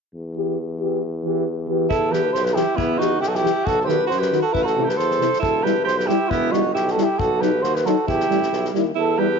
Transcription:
0.14 tuba E2
0.35 trombone E3, euphonium G4
0.81 trombone E3, euphonium G4
1.24 trombone E3, euphonium G4
1.68 trombone E3, euphonium G4
1.90 tuba E2, alto saxophone E4, flugelhorn A4, kick
2.11 trombone E3, alto saxophone G4, euphonium G4, flugelhorn B4, snare
2.33 tuba B1, alto saxophone G4, flugelhorn C5, snare
2.44 alto saxophone G4, flugelhorn B4, snare
2.54 trombone E3, alto saxophone E4, flugelhorn G4, euphonium G4, snare
2.76 tuba E2, alto saxophone B3, flugelhorn E4, kick
2.98 trombone E3, alto saxophone D#4, flugelhorn F#4, euphonium G4, snare
3.20 tuba B1, alto saxophone E4, flugelhorn G4, snare
3.28 alto saxophone F#4, flugelhorn A4
3.35 alto saxophone E4, flugelhorn G4, snare
3.42 trombone E3, euphonium G4, snare
3.64 tuba B1, alto saxophone F#4, flugelhorn A4, kick
3.81 alto saxophone G4 A4, flugelhorn C5
3.87 trombone D#3, euphonium F#4, flugelhorn B4, snare
4.07 tuba F#2, alto saxophone F#4, flugelhorn C5
4.11 snare
4.19 alto saxophone G4, flugelhorn B4, snare
4.32 trombone D#3, euphonium F#4, snare
4.42 alto saxophone F#4, flugelhorn A4
4.53 tuba A1, alto saxophone E4, flugelhorn B4, kick
4.63 alto saxophone F#4, flugelhorn A4, snare
4.77 trombone C3, euphonium E4
4.84 alto saxophone G4
4.89 flugelhorn B4, snare
4.96 tuba E2, alto saxophone A4, flugelhorn C5, snare
5.11 snare
5.20 trombone C3, euphonium E4, snare
5.33 snare
5.39 tuba E1, alto saxophone E4, flugelhorn A4, kick
5.63 trombone G3, euphonium E4, alto saxophone G4, flugelhorn B4, snare
5.84 tuba B1, alto saxophone G4, flugelhorn C5, snare
5.97 alto saxophone G4, flugelhorn B4, snare
6.07 trombone G3, alto saxophone E4, euphonium E4, flugelhorn G4, snare
6.29 tuba E1, alto saxophone B3, flugelhorn E4, kick
6.52 trombone G3, alto saxophone D#4, euphonium E4, flugelhorn F#4, snare
6.74 tuba B1, alto saxophone E4, flugelhorn G4, snare
6.88 alto saxophone F#4, flugelhorn A4, snare
6.96 trombone G3, euphonium E4, snare
7.04 alto saxophone E4, flugelhorn G4
7.18 tuba B1, alto saxophone F#4, flugelhorn A4, kick
7.40 trombone F#3, euphonium D#4, alto saxophone G4, flugelhorn B4, snare
7.62 tuba D#2, alto saxophone F#4, flugelhorn C5, snare
7.75 alto saxophone G4, flugelhorn B4, snare
7.85 trombone F#3, euphonium D#4, alto saxophone F#4, flugelhorn A4, snare
8.07 tuba E2, alto saxophone E4, flugelhorn G4, kick
8.20 snare
8.29 tuba A1, trombone G3, euphonium E4, snare
8.43 snare
8.52 tuba B1, snare
8.65 snare
8.73 tuba D#2, trombone G3, euphonium E4, snare
8.95 tuba E2, alto saxophone E4, flugelhorn A4
9.18 trombone G3, euphonium E4, alto saxophone G4, flugelhorn B4

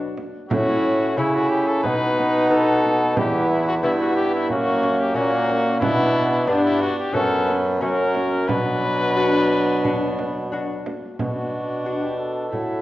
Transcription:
Already playing: lute B2 D4 F#4, bassoon B2, trombone F#3, viola D4, cornet B4
0.18 frame drum
0.49 lute A2, bassoon A2, trombone C#4, viola E4, cornet F#4, frame drum
1.17 lute C#3 A3 C#4 E4, bassoon C#3, trombone C#4, viola E4, cornet E4
1.35 cornet F#4
1.49 cornet G4
1.67 cornet A4
1.83 lute B2, bassoon B2, trombone B3, viola D#4, cornet B4, frame drum
2.18 frame drum
2.50 lute B3 D#4, cornet A4
2.84 frame drum
3.16 lute E2, bassoon E2, trombone B3, viola E4, cornet G4, frame drum
3.49 cornet E4
3.68 cornet F#4
3.83 lute G2 B3 E4, bassoon G2, trombone B3, cornet E4, viola E4
4.00 cornet F#4
4.16 cornet G4
4.35 cornet E4
4.49 lute F#2, bassoon F#2, trombone A#3, viola C#4, cornet F#4, frame drum
4.83 frame drum
5.00 cornet G4
5.14 lute A#2 A#3 C#4, bassoon A#2, trombone A#3, viola C#4, cornet F#4
5.49 frame drum
5.80 lute B2, bassoon B2, trombone B3, viola D4, cornet E4, frame drum
6.47 lute G2 B3 D4, bassoon G2, trombone B3, viola D4, cornet D4
6.64 cornet E4
6.81 cornet F#4
6.99 cornet G4
7.13 lute F#2 B3 F#4, bassoon F#2, trombone B3, viola C#4, cornet A4, frame drum
7.48 frame drum
7.80 lute F#2 C#4 F#4, bassoon F#2, trombone F#3, viola C#4, cornet A#4
8.15 frame drum
8.48 lute B2, bassoon B2, trombone F#3, viola D4, cornet B4, frame drum
9.16 lute D4 F#4
9.84 lute D4 F#4, frame drum
10.19 frame drum
10.52 lute D4 F#4
10.86 frame drum
11.19 lute B2, bassoon B2, viola D4, cornet F#4, frame drum
11.85 lute D4 F#4
12.02 cornet G4
12.17 cornet A4
12.52 lute A2, bassoon A2, viola E4, trombone F#4, frame drum

